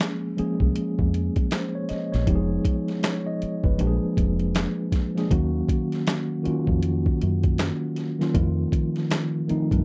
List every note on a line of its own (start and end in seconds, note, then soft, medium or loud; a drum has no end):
0.00 0.24 F3 medium
0.00 0.25 G#3 medium
0.00 0.25 A#3 medium
0.00 0.25 C#4 medium
0.00 0.26 G#4 medium
0.00 snare loud
0.00 clap medium
0.00 closed hi-hat medium
0.37 1.72 F3 medium
0.37 1.72 G#3 medium
0.37 1.73 A#3 medium
0.37 1.73 C#4 medium
0.37 1.73 G#4 medium
0.37 muted fingered electric bass stroke soft
0.37 closed hi-hat medium
0.60 0.72 C2 medium
0.60 kick medium
0.76 muted fingered electric bass stroke soft
0.76 closed hi-hat medium
0.99 1.29 F2 medium
0.99 kick medium
1.14 closed hi-hat medium
1.36 kick medium
1.36 closed hi-hat soft
1.51 1.73 C5 medium
1.51 snare medium
1.51 clap medium
1.51 closed hi-hat medium
1.75 1.89 C#5 medium
1.89 2.11 D#5 medium
1.89 muted fingered electric bass stroke soft
1.89 snare soft
1.89 closed hi-hat medium
2.12 2.25 A#1 medium
2.12 2.48 C#5 medium
2.12 snare soft
2.12 closed hi-hat soft
2.26 2.57 F1 medium
2.26 3.28 F3 medium
2.26 3.29 G#3 medium
2.26 3.29 B3 medium
2.26 3.29 D#4 medium
2.26 2.36 G4 medium
2.26 kick loud
2.26 closed hi-hat medium
2.35 3.33 G#4 medium
2.65 kick medium
2.65 closed hi-hat medium
2.88 snare soft
2.88 closed hi-hat soft
3.03 3.25 C#5 medium
3.03 snare loud
3.03 clap medium
3.03 closed hi-hat medium
3.27 3.62 D#5 medium
3.42 muted fingered electric bass stroke soft
3.42 closed hi-hat medium
3.64 3.76 G1 medium
3.64 4.00 B4 medium
3.64 kick medium
3.77 3.98 A#1 medium
3.77 4.93 F3 medium
3.77 4.93 G#3 medium
3.77 4.94 A#3 medium
3.77 4.94 D4 medium
3.77 3.88 G4 medium
3.77 closed hi-hat medium
3.87 4.98 G#4 medium
4.04 muted fingered electric bass stroke soft
4.17 4.66 F1 medium
4.17 kick medium
4.17 closed hi-hat medium
4.39 closed hi-hat soft
4.55 snare medium
4.55 clap medium
4.55 closed hi-hat medium
4.92 kick medium
4.92 snare soft
4.92 closed hi-hat medium
5.15 5.28 F3 medium
5.15 5.29 G#3 medium
5.15 5.29 A#3 medium
5.15 5.29 D4 medium
5.15 5.30 G#4 medium
5.15 snare soft
5.15 closed hi-hat soft
5.29 5.61 D#2 loud
5.29 6.32 D#3 medium
5.29 6.32 F#3 medium
5.29 6.33 A#3 medium
5.29 6.33 C#4 medium
5.29 6.33 F#4 medium
5.29 kick loud
5.29 closed hi-hat medium
5.68 kick medium
5.68 closed hi-hat medium
5.92 snare soft
5.92 closed hi-hat soft
6.07 snare loud
6.07 clap medium
6.07 closed hi-hat medium
6.43 7.79 D#3 medium
6.43 7.80 A#3 medium
6.43 7.80 C#4 medium
6.43 7.80 F4 medium
6.43 7.79 F#4 medium
6.43 muted fingered electric bass stroke soft
6.43 closed hi-hat medium
6.67 7.09 F2 medium
6.67 kick medium
6.83 closed hi-hat medium
7.06 kick medium
7.21 7.70 F#2 medium
7.21 closed hi-hat medium
7.43 kick medium
7.43 closed hi-hat soft
7.58 snare loud
7.58 clap medium
7.58 closed hi-hat medium
7.96 snare soft
7.96 closed hi-hat medium
8.19 8.32 D#3 medium
8.19 8.32 F#3 medium
8.19 8.33 A#3 medium
8.19 8.33 C#4 medium
8.19 8.33 F4 medium
8.19 snare soft
8.19 closed hi-hat soft
8.34 8.65 F2 medium
8.34 9.36 D#3 medium
8.34 9.36 F3 medium
8.34 9.37 A3 medium
8.34 9.37 C4 medium
8.34 8.43 E4 medium
8.34 kick loud
8.34 closed hi-hat medium
8.43 9.41 F4 medium
8.72 kick medium
8.72 closed hi-hat medium
8.96 snare soft
8.96 closed hi-hat soft
9.11 snare loud
9.11 clap medium
9.11 closed hi-hat medium
9.47 9.85 D#3 medium
9.47 9.85 F3 medium
9.47 9.85 A3 medium
9.47 9.85 C4 medium
9.47 9.85 D#4 medium
9.47 muted fingered electric bass stroke soft
9.47 closed hi-hat medium
9.71 9.84 G2 medium
9.71 kick medium
9.71 closed hi-hat soft